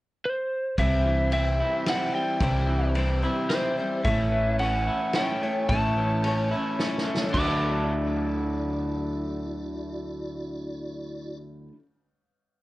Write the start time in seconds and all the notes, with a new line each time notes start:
0.25 C5
0.77 C2 C3 E3 G3 C4 E4 G4 C5 E5, kick, ride
1.05 E3
1.31 G3 C4 E4 C5 E5, ride
1.60 E4
1.86 G3 C4 E4 C5 F#5, snare, ride
2.14 G3 G5
2.40 C2 C3 E3 G3 C4 E4 C5, kick, ride
2.68 E3
2.95 G3 C4 E4 C5, ride
3.23 G3 C4 E4 C5
3.50 G3 C4 E4 C5, snare, ride
3.77 G3 C4 E4 C5
4.04 A1 A2 E3 A3 C#4 E4 C#5 E5, kick, ride
4.32 E3
4.59 A3 C#4 E4 C#5 F#5, ride
4.87 E4
5.13 A3 C#4 G5, snare, ride
5.17 E4 C#5
5.41 A3 C#4 E4 C#5
5.46 A3
5.69 A1 A2 E3 A3 C#4 E4 A5, kick, ride
5.73 C#5
5.97 E3
6.24 A3 C#4 E4 C#5, ride
6.52 A3 C#4 E4 C#5
6.79 A3 C#4 E4 C#5, snare
6.98 snare
7.07 A3
7.17 snare
7.29 D3
7.33 D2 D3 F#3 E4 F#4 D5 D6, kick, crash
7.38 A3 D4
7.44 E4 A4